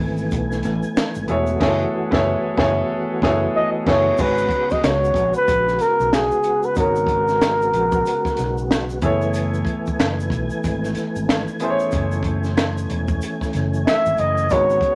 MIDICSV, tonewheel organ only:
0, 0, Header, 1, 2, 480
1, 0, Start_track
1, 0, Tempo, 645161
1, 1195, Time_signature, 4, 2, 24, 8
1, 11123, End_track
2, 0, Start_track
2, 0, Title_t, "Tonewheel organ"
2, 0, Program_c, 0, 16
2, 0, Note_on_c, 0, 52, 64
2, 0, Note_on_c, 0, 57, 58
2, 0, Note_on_c, 0, 59, 58
2, 0, Note_on_c, 0, 80, 75
2, 937, Note_off_c, 0, 80, 0
2, 956, Note_on_c, 0, 66, 76
2, 3085, Note_off_c, 0, 59, 0
2, 3086, Note_off_c, 0, 52, 0
2, 3087, Note_off_c, 0, 57, 0
2, 3094, Note_off_c, 0, 66, 0
2, 3113, Note_on_c, 0, 66, 73
2, 3114, Note_on_c, 0, 59, 58
2, 3116, Note_on_c, 0, 56, 58
2, 3117, Note_on_c, 0, 49, 64
2, 6684, Note_off_c, 0, 66, 0
2, 6685, Note_off_c, 0, 56, 0
2, 6686, Note_off_c, 0, 49, 0
2, 6715, Note_on_c, 0, 80, 72
2, 6717, Note_on_c, 0, 52, 69
2, 6717, Note_on_c, 0, 57, 64
2, 8605, Note_off_c, 0, 59, 0
2, 8635, Note_on_c, 0, 61, 62
2, 10765, Note_off_c, 0, 80, 0
2, 10766, Note_off_c, 0, 52, 0
2, 10766, Note_off_c, 0, 57, 0
2, 10773, Note_off_c, 0, 61, 0
2, 10794, Note_on_c, 0, 56, 63
2, 10796, Note_on_c, 0, 59, 56
2, 10797, Note_on_c, 0, 49, 63
2, 10798, Note_on_c, 0, 66, 75
2, 11123, Note_off_c, 0, 49, 0
2, 11123, Note_off_c, 0, 56, 0
2, 11123, Note_off_c, 0, 59, 0
2, 11123, Note_off_c, 0, 66, 0
2, 11123, End_track
0, 0, End_of_file